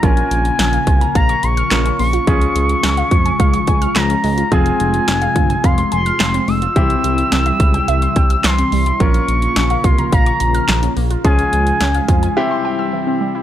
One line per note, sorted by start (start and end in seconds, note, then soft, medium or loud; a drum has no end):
0.03 0.23 A#1 loud
0.03 2.25 C#3 medium
0.03 0.14 F3 loud
0.03 2.25 A#3 medium
0.03 1.68 C#4 medium
0.03 1.68 F4 medium
0.03 6.72 F4 medium
0.03 1.68 A#4 medium
0.03 1.15 G#5 loud
0.03 kick loud
0.03 closed hi-hat medium
0.17 closed hi-hat medium
0.31 0.51 A#1 loud
0.31 closed hi-hat medium
0.45 closed hi-hat soft
0.59 0.79 A#1 medium
0.59 0.70 C#4 medium
0.59 snare loud
0.59 closed hi-hat medium
0.73 0.84 F5 medium
0.73 closed hi-hat soft
0.87 1.07 C2 loud
0.87 0.98 F4 medium
0.87 kick medium
0.87 closed hi-hat medium
1.01 1.12 A#5 medium
1.01 closed hi-hat medium
1.15 1.35 A#1 loud
1.15 1.26 F5 loud
1.15 1.45 A#5 loud
1.15 kick loud
1.15 closed hi-hat medium
1.29 1.40 C#6 medium
1.29 closed hi-hat medium
1.43 1.63 A#1 loud
1.43 1.54 A#5 medium
1.43 1.99 C#6 loud
1.43 closed hi-hat medium
1.57 1.68 F6 medium
1.57 closed hi-hat medium
1.71 1.91 A#1 loud
1.71 1.82 F3 medium
1.71 2.26 C#4 medium
1.71 2.26 F4 soft
1.71 2.27 A#4 medium
1.71 snare loud
1.71 clap loud
1.71 closed hi-hat medium
1.85 1.96 C#4 medium
1.85 closed hi-hat medium
1.99 2.19 A#1 loud
1.99 2.10 A#3 medium
1.99 3.97 C#6 loud
1.99 open hi-hat medium
2.13 2.24 F4 medium
2.13 closed hi-hat medium
2.27 2.47 C#2 loud
2.27 4.49 C#3 medium
2.27 2.38 F3 loud
2.27 6.72 G#3 medium
2.27 4.48 C#4 medium
2.27 4.48 F4 medium
2.27 4.48 G#4 medium
2.27 kick loud
2.27 closed hi-hat medium
2.41 closed hi-hat medium
2.55 2.75 C#2 loud
2.55 closed hi-hat medium
2.69 closed hi-hat medium
2.83 3.03 C#2 loud
2.83 2.94 C#4 medium
2.83 snare loud
2.83 closed hi-hat medium
2.97 3.08 F5 medium
2.97 closed hi-hat soft
3.11 3.31 F2 medium
3.11 3.22 F4 medium
3.11 kick medium
3.11 closed hi-hat medium
3.26 3.36 G#5 medium
3.26 closed hi-hat medium
3.40 3.59 C#2 loud
3.40 3.50 F5 loud
3.40 kick loud
3.40 closed hi-hat medium
3.54 3.64 C#6 medium
3.54 closed hi-hat medium
3.67 3.87 C#2 loud
3.67 3.78 G#5 medium
3.67 kick medium
3.67 closed hi-hat medium
3.82 3.92 F6 medium
3.82 closed hi-hat medium
3.96 4.15 C#2 loud
3.96 4.06 F3 medium
3.96 4.53 A#5 loud
3.96 snare loud
3.96 clap loud
3.96 closed hi-hat medium
4.10 4.20 C#4 medium
4.10 closed hi-hat medium
4.24 4.43 C#2 loud
4.24 4.34 G#3 medium
4.24 open hi-hat medium
4.38 4.48 F4 medium
4.38 closed hi-hat medium
4.52 4.71 F1 loud
4.52 6.74 C3 medium
4.52 4.62 F3 loud
4.52 6.72 C4 medium
4.52 6.72 F4 medium
4.52 6.72 G#4 medium
4.52 5.66 G#5 loud
4.52 kick loud
4.52 closed hi-hat medium
4.66 closed hi-hat soft
4.80 4.99 F1 loud
4.80 closed hi-hat medium
4.94 closed hi-hat medium
5.08 5.27 F1 loud
5.08 5.18 C4 medium
5.08 snare loud
5.08 closed hi-hat medium
5.22 5.32 F5 medium
5.22 closed hi-hat soft
5.36 5.55 G1 medium
5.36 5.46 F4 medium
5.36 kick medium
5.36 closed hi-hat medium
5.50 5.60 G#5 medium
5.50 closed hi-hat medium
5.64 5.84 F1 loud
5.64 5.74 F5 loud
5.64 5.92 C6 loud
5.64 kick medium
5.64 closed hi-hat medium
5.78 5.88 C6 medium
5.78 closed hi-hat medium
5.92 6.11 F1 loud
5.92 6.02 G#5 medium
5.92 6.50 C6 loud
5.92 closed hi-hat medium
6.06 6.16 F6 medium
6.06 closed hi-hat medium
6.20 6.40 F1 loud
6.20 6.30 F3 medium
6.20 snare loud
6.20 clap loud
6.20 closed hi-hat medium
6.34 6.45 C4 medium
6.34 closed hi-hat medium
6.48 6.68 F1 loud
6.48 6.59 G#3 medium
6.48 8.46 E6 loud
6.48 open hi-hat medium
6.62 6.73 F4 medium
6.62 closed hi-hat medium
6.76 6.96 C2 loud
6.76 8.98 C3 medium
6.76 6.87 E3 loud
6.76 8.98 G3 medium
6.76 8.96 C4 medium
6.76 8.96 E4 medium
6.76 8.98 E4 medium
6.76 8.96 G4 medium
6.76 kick loud
6.76 closed hi-hat medium
6.90 closed hi-hat medium
7.04 7.24 C2 medium
7.04 closed hi-hat medium
7.18 closed hi-hat medium
7.32 7.52 C2 loud
7.32 7.43 C4 medium
7.32 snare loud
7.32 closed hi-hat medium
7.46 7.57 E5 medium
7.46 closed hi-hat soft
7.60 7.80 C#2 loud
7.60 7.71 E4 medium
7.60 kick loud
7.60 closed hi-hat medium
7.74 7.85 G5 medium
7.74 closed hi-hat medium
7.88 8.08 C2 loud
7.88 7.99 E5 loud
7.88 closed hi-hat medium
8.02 8.13 C6 medium
8.02 closed hi-hat medium
8.16 8.36 C2 loud
8.16 8.27 G5 medium
8.16 kick medium
8.16 closed hi-hat medium
8.30 8.41 E6 medium
8.30 closed hi-hat medium
8.44 8.64 C2 loud
8.44 8.55 E3 medium
8.44 9.02 C6 loud
8.44 snare loud
8.44 clap loud
8.44 closed hi-hat medium
8.58 8.69 C4 medium
8.58 closed hi-hat medium
8.72 8.92 C2 loud
8.72 8.83 G3 medium
8.72 open hi-hat medium
8.86 8.97 E4 medium
8.86 closed hi-hat medium
9.00 9.20 A#1 loud
9.00 12.33 C#3 medium
9.00 9.11 F3 loud
9.00 11.22 A#3 medium
9.00 11.21 C#4 medium
9.00 11.22 F4 medium
9.00 11.21 F4 medium
9.00 11.21 A#4 medium
9.00 9.86 C#6 loud
9.00 kick loud
9.00 closed hi-hat medium
9.14 closed hi-hat medium
9.28 9.48 A#1 medium
9.28 closed hi-hat medium
9.42 closed hi-hat medium
9.56 9.76 A#1 loud
9.56 9.67 C#4 medium
9.56 snare loud
9.56 closed hi-hat medium
9.70 9.81 F5 medium
9.70 closed hi-hat soft
9.84 10.04 C2 loud
9.84 9.95 F4 medium
9.84 10.12 C6 medium
9.84 kick loud
9.84 closed hi-hat medium
9.98 10.09 A#5 medium
9.98 closed hi-hat medium
10.12 10.32 A#1 loud
10.12 10.23 F5 loud
10.12 10.93 A#5 medium
10.12 kick loud
10.12 closed hi-hat medium
10.26 10.37 C#6 medium
10.26 closed hi-hat medium
10.40 10.60 A#1 loud
10.40 10.51 A#5 medium
10.40 closed hi-hat medium
10.55 10.65 F6 medium
10.55 closed hi-hat medium
10.69 10.88 A#1 loud
10.69 10.79 F3 medium
10.69 snare loud
10.69 clap loud
10.69 closed hi-hat medium
10.83 10.93 C#4 medium
10.83 closed hi-hat medium
10.97 11.16 A#1 loud
10.97 11.07 A#3 medium
10.97 open hi-hat medium
11.11 11.21 F4 medium
11.11 closed hi-hat medium
11.25 11.44 C#2 loud
11.25 11.35 F3 loud
11.25 12.36 G#3 medium
11.25 12.34 C#4 medium
11.25 12.34 F4 medium
11.25 12.36 F4 medium
11.25 12.35 G#4 medium
11.25 12.33 G#5 loud
11.25 kick loud
11.25 closed hi-hat medium
11.39 closed hi-hat medium
11.53 11.72 C#2 loud
11.53 closed hi-hat medium
11.67 closed hi-hat medium
11.81 12.00 C#2 loud
11.81 11.91 C#4 medium
11.81 snare loud
11.81 closed hi-hat medium
11.95 12.05 F5 medium
11.95 closed hi-hat medium
12.08 12.28 F2 loud
12.08 12.19 F4 medium
12.08 kick loud
12.08 closed hi-hat medium
12.23 12.33 G#5 medium
12.23 closed hi-hat medium
12.37 13.43 C3 medium
12.37 13.43 G3 medium
12.37 13.43 C4 medium
12.37 13.43 E4 medium
12.37 13.43 G4 medium
12.37 12.47 E5 loud
12.51 12.61 C6 medium
12.65 12.75 G5 medium
12.79 12.89 E6 medium
12.93 13.03 E3 medium
13.07 13.17 C4 medium
13.21 13.31 G3 medium
13.35 13.43 E4 medium